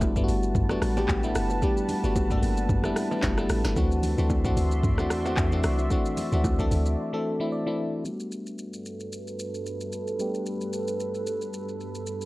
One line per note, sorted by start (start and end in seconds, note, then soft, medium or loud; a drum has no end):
0.00 0.26 G1 loud
0.00 0.16 G3 medium
0.00 3.72 G3 medium
0.00 0.17 A3 medium
0.00 0.17 B3 medium
0.00 0.17 D4 medium
0.00 0.11 E4 loud
0.00 0.24 F#4 loud
0.00 3.72 B4 medium
0.00 3.72 F#5 medium
0.00 3.72 A5 loud
0.00 kick loud
0.00 high bongo medium
0.00 shaker medium
0.16 0.58 G3 medium
0.16 0.58 A3 medium
0.16 0.58 B3 medium
0.16 0.58 D4 medium
0.16 0.23 E4 medium
0.16 kick medium
0.16 mid tom medium
0.16 shaker medium
0.24 0.62 F#4 loud
0.28 0.79 G1 loud
0.28 open hi-hat soft
0.28 shaker medium
0.43 shaker medium
0.55 kick loud
0.55 mid tom loud
0.55 low conga medium
0.55 shaker medium
0.69 0.91 G3 medium
0.69 0.91 A3 medium
0.69 0.91 B3 medium
0.69 0.91 D4 medium
0.69 0.91 F#4 loud
0.69 cross-stick medium
0.69 low bongo medium
0.69 shaker soft
0.82 1.07 A1 medium
0.82 cross-stick loud
0.82 open hi-hat medium
0.82 shaker medium
0.97 1.18 G3 medium
0.97 1.18 A3 medium
0.97 1.18 B3 medium
0.97 1.18 D4 medium
0.97 1.18 G4 loud
0.97 low bongo medium
0.97 shaker medium
1.08 1.34 A1 medium
1.08 kick loud
1.08 clap loud
1.08 high bongo medium
1.08 shaker medium
1.23 1.55 G3 medium
1.23 1.55 A3 medium
1.23 1.55 B3 medium
1.23 1.55 D4 medium
1.23 1.56 E4 loud
1.23 shaker soft
1.35 1.61 F#1 loud
1.35 cross-stick loud
1.35 open hi-hat medium
1.35 shaker loud
1.50 high bongo medium
1.50 shaker medium
1.62 1.95 G3 medium
1.62 1.95 A3 medium
1.62 1.95 B3 medium
1.62 1.95 D4 medium
1.62 1.95 G4 medium
1.62 kick loud
1.62 low conga medium
1.62 shaker medium
1.77 shaker medium
1.89 open hi-hat soft
1.89 low conga medium
1.89 shaker medium
2.04 2.40 G1 loud
2.04 2.25 G3 medium
2.04 2.25 A3 medium
2.04 2.25 B3 medium
2.04 2.25 D4 medium
2.04 2.25 F#4 loud
2.04 shaker medium
2.16 kick loud
2.16 high bongo medium
2.16 shaker medium
2.30 2.72 G3 medium
2.30 2.72 A3 medium
2.30 2.37 A#3 medium
2.30 2.73 D4 medium
2.30 2.73 A4 loud
2.30 kick medium
2.30 mid tom medium
2.30 shaker medium
2.38 2.76 B3 medium
2.42 2.93 G1 loud
2.42 open hi-hat soft
2.42 shaker medium
2.57 shaker medium
2.69 kick loud
2.69 mid tom loud
2.69 low conga medium
2.69 shaker medium
2.84 3.05 G3 medium
2.84 3.05 A3 medium
2.84 3.05 B3 medium
2.84 3.05 D4 medium
2.84 3.06 E4 loud
2.84 cross-stick medium
2.84 low bongo medium
2.84 shaker soft
2.96 cross-stick loud
2.96 open hi-hat medium
2.96 shaker medium
3.11 3.32 G3 medium
3.11 3.32 A3 medium
3.11 3.32 B3 medium
3.11 3.32 D4 medium
3.11 3.32 E4 loud
3.11 low bongo medium
3.11 shaker soft
3.23 3.48 F#1 loud
3.23 kick loud
3.23 snare medium
3.23 clap loud
3.23 high bongo medium
3.23 shaker medium
3.38 3.69 G3 medium
3.38 3.69 A3 medium
3.38 3.70 B3 medium
3.38 3.70 D4 medium
3.38 3.70 E4 loud
3.38 cross-stick loud
3.38 shaker soft
3.50 3.64 A1 medium
3.50 cross-stick loud
3.50 open hi-hat medium
3.50 shaker loud
3.64 3.76 G1 loud
3.64 cross-stick medium
3.64 snare medium
3.64 high bongo medium
3.64 shaker medium
3.76 4.16 D2 loud
3.76 4.09 E3 medium
3.76 4.09 A3 medium
3.76 4.10 C4 medium
3.76 4.10 D4 medium
3.76 8.01 F#4 medium
3.76 4.10 F#4 loud
3.76 8.01 D5 medium
3.76 8.01 E5 medium
3.76 8.01 C6 loud
3.76 kick loud
3.76 low conga medium
3.76 shaker medium
3.91 shaker medium
4.03 open hi-hat soft
4.03 low conga medium
4.03 shaker medium
4.18 4.55 D2 loud
4.18 4.39 E3 medium
4.18 4.39 A3 medium
4.18 4.39 C4 medium
4.18 4.39 D4 medium
4.18 4.40 F#4 loud
4.18 shaker medium
4.30 kick loud
4.30 high bongo medium
4.30 shaker medium
4.45 4.87 E3 medium
4.45 4.87 A3 medium
4.45 4.87 C4 medium
4.45 4.87 D4 medium
4.45 4.87 F#4 loud
4.45 kick loud
4.45 mid tom medium
4.45 shaker medium
4.57 5.12 D2 loud
4.57 open hi-hat soft
4.57 shaker medium
4.72 shaker medium
4.83 kick loud
4.83 mid tom loud
4.83 low conga medium
4.83 shaker medium
4.98 5.19 E3 medium
4.98 5.19 A3 medium
4.98 5.20 C4 medium
4.98 5.20 D4 medium
4.98 5.20 F#4 loud
4.98 cross-stick medium
4.98 low bongo medium
4.98 shaker soft
5.10 5.36 E2 medium
5.10 cross-stick loud
5.10 open hi-hat soft
5.10 shaker medium
5.25 5.46 E3 medium
5.25 5.46 A3 medium
5.25 5.46 C4 medium
5.25 5.46 D4 medium
5.25 5.47 F#4 loud
5.25 low bongo medium
5.25 shaker soft
5.37 5.63 E2 loud
5.37 kick loud
5.37 clap loud
5.37 high bongo medium
5.37 shaker medium
5.52 5.84 E3 medium
5.52 5.84 A3 medium
5.52 5.84 C4 medium
5.52 5.84 D4 medium
5.52 5.84 F#4 loud
5.52 shaker soft
5.64 5.89 C2 loud
5.64 cross-stick loud
5.64 open hi-hat medium
5.64 shaker loud
5.79 high bongo medium
5.79 shaker medium
5.91 6.24 E3 medium
5.91 6.24 A3 medium
5.91 6.24 C4 medium
5.91 6.24 D4 medium
5.91 6.24 F#4 loud
5.91 kick loud
5.91 low conga medium
5.91 shaker medium
6.06 shaker medium
6.17 open hi-hat soft
6.17 low conga medium
6.17 shaker medium
6.32 6.69 D2 loud
6.32 6.53 E3 medium
6.32 6.53 A3 medium
6.32 6.54 C4 medium
6.32 6.54 D4 medium
6.32 6.54 F#4 medium
6.32 shaker medium
6.44 kick loud
6.44 high bongo medium
6.44 shaker medium
6.59 7.01 E3 medium
6.59 7.01 A3 medium
6.59 7.01 C4 medium
6.59 7.01 D4 medium
6.59 7.01 A4 loud
6.59 kick medium
6.59 shaker medium
6.71 6.96 D2 loud
6.71 open hi-hat soft
6.71 shaker medium
6.86 shaker medium
7.13 7.34 E3 medium
7.13 7.34 A3 medium
7.13 7.34 C4 medium
7.13 7.34 D4 medium
7.13 7.34 A4 loud
7.40 7.60 E3 medium
7.40 7.61 A3 medium
7.40 7.61 C4 medium
7.40 7.61 D4 medium
7.40 7.61 E4 loud
7.52 8.02 D5 medium
7.66 7.98 E3 medium
7.66 7.98 A3 medium
7.66 7.98 C4 medium
7.66 7.98 D4 medium
7.66 7.98 E4 loud
8.05 12.25 G2 medium
8.05 10.15 G3 medium
8.05 12.25 G3 medium
8.05 10.15 A3 medium
8.05 10.16 B3 medium
8.05 10.16 D4 medium
8.05 10.16 F#4 medium
8.05 12.25 A4 medium
8.05 12.25 B4 loud
8.05 shaker medium
8.20 shaker soft
8.32 shaker medium
8.47 shaker soft
8.59 shaker medium
8.73 shaker medium
8.86 shaker medium
9.00 shaker medium
9.12 shaker medium
9.27 shaker soft
9.39 shaker medium
9.54 shaker soft
9.66 shaker medium
9.81 shaker soft
9.92 shaker medium
10.07 shaker soft
10.19 12.25 G3 medium
10.19 12.25 A3 medium
10.19 12.25 B3 medium
10.19 12.25 D4 medium
10.19 12.25 G4 medium
10.19 shaker medium
10.34 shaker medium
10.46 shaker medium
10.61 shaker medium
10.73 shaker medium
10.88 shaker medium
11.00 shaker medium
11.14 shaker medium
11.27 shaker medium
11.41 shaker soft
11.54 shaker medium
11.69 shaker soft
11.80 shaker medium
11.95 shaker soft
12.07 shaker medium
12.21 shaker soft